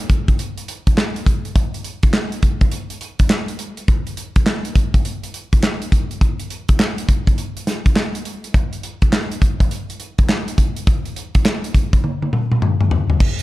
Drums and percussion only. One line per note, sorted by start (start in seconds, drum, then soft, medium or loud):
0.10 kick medium
0.10 closed hi-hat medium
0.28 kick medium
0.28 closed hi-hat soft
0.39 closed hi-hat medium
0.58 closed hi-hat medium
0.68 closed hi-hat medium
0.87 kick medium
0.87 closed hi-hat medium
0.98 snare loud
0.98 clap medium
1.16 closed hi-hat medium
1.26 kick medium
1.26 closed hi-hat medium
1.45 closed hi-hat soft
1.56 kick loud
1.56 closed hi-hat medium
1.74 closed hi-hat medium
1.84 closed hi-hat medium
2.03 kick medium
2.03 closed hi-hat medium
2.13 snare loud
2.13 clap medium
2.32 closed hi-hat medium
2.43 kick medium
2.43 closed hi-hat medium
2.61 kick medium
2.61 closed hi-hat soft
2.71 closed hi-hat medium
2.90 closed hi-hat medium
3.01 closed hi-hat medium
3.19 kick medium
3.19 closed hi-hat medium
3.30 snare loud
3.30 clap medium
3.48 closed hi-hat medium
3.59 closed hi-hat medium
3.77 closed hi-hat soft
3.88 kick loud
3.88 closed hi-hat medium
4.07 closed hi-hat medium
4.17 closed hi-hat medium
4.36 kick medium
4.36 closed hi-hat medium
4.46 snare loud
4.46 clap medium
4.65 closed hi-hat medium
4.75 kick medium
4.75 closed hi-hat medium
4.94 kick medium
4.94 closed hi-hat medium
5.05 closed hi-hat medium
5.23 closed hi-hat medium
5.34 closed hi-hat medium
5.53 kick medium
5.53 closed hi-hat medium
5.63 snare medium
5.63 clap medium
5.82 closed hi-hat soft
5.92 kick medium
5.92 closed hi-hat medium
6.11 closed hi-hat soft
6.21 kick loud
6.21 closed hi-hat medium
6.40 closed hi-hat medium
6.50 closed hi-hat medium
6.69 kick medium
6.69 closed hi-hat medium
6.80 snare loud
6.80 clap medium
6.98 closed hi-hat medium
7.09 kick medium
7.09 closed hi-hat medium
7.27 kick medium
7.27 closed hi-hat medium
7.38 closed hi-hat medium
7.57 closed hi-hat medium
7.67 snare medium
7.67 closed hi-hat medium
7.86 kick medium
7.86 closed hi-hat medium
7.96 snare loud
7.96 clap medium
8.15 closed hi-hat medium
8.25 closed hi-hat medium
8.44 closed hi-hat medium
8.54 kick loud
8.54 closed hi-hat medium
8.73 closed hi-hat medium
8.83 closed hi-hat medium
9.02 kick medium
9.02 closed hi-hat medium
9.13 snare loud
9.13 clap medium
9.32 closed hi-hat medium
9.42 kick medium
9.42 closed hi-hat medium
9.60 kick medium
9.60 closed hi-hat medium
9.71 closed hi-hat medium
9.90 closed hi-hat medium
10.00 closed hi-hat medium
10.18 kick medium
10.18 closed hi-hat medium
10.29 snare loud
10.29 clap medium
10.48 closed hi-hat medium
10.58 kick medium
10.58 closed hi-hat medium
10.76 closed hi-hat soft
10.87 kick loud
10.87 closed hi-hat medium
11.06 closed hi-hat medium
11.16 closed hi-hat medium
11.35 kick medium
11.35 closed hi-hat medium
11.45 snare loud
11.45 clap medium
11.64 closed hi-hat medium
11.75 kick medium
11.75 closed hi-hat medium
11.93 kick medium
11.93 closed hi-hat soft
12.04 high tom medium
12.22 high tom medium
12.33 mid tom medium
12.52 mid tom medium
12.62 mid tom medium
12.81 mid tom medium
12.91 floor tom loud
13.10 floor tom medium
13.20 kick loud
13.20 crash medium
13.39 closed hi-hat medium